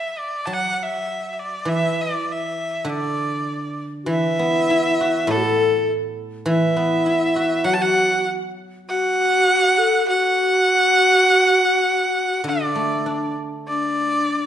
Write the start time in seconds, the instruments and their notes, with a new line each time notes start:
Already playing: erhu E5
0.19 erhu D5
0.45 guzheng F#3, erhu A5
0.53 erhu F#5
0.73 erhu F#5
0.83 erhu E5
1.33 erhu E5
1.40 erhu D5
1.65 guzheng E3, erhu E5
2.01 erhu D5
2.32 erhu E5
2.85 guzheng D3
2.90 erhu D5
4.04 guzheng E3, shakuhachi F#4
4.09 shakuhachi E4, erhu E5
4.39 guzheng B3
4.70 guzheng E4
5.01 guzheng F#4
5.27 guzheng A2, shakuhachi A4
5.31 erhu A4
5.37 shakuhachi F#4
5.43 shakuhachi A4
6.46 guzheng E3, erhu E5
6.50 shakuhachi E4
6.76 guzheng B3
7.06 guzheng E4
7.36 guzheng F#4
7.64 guzheng F#3, shakuhachi F#4, erhu F#5
7.73 erhu A5
7.79 shakuhachi F#4, erhu F#5
8.89 shakuhachi F#4, erhu F#5
9.78 shakuhachi A4
10.08 shakuhachi F#4, erhu F#5
12.44 guzheng D3, shakuhachi D4
12.48 erhu D5
12.75 guzheng A3
13.06 guzheng D4
13.67 shakuhachi D4, erhu D5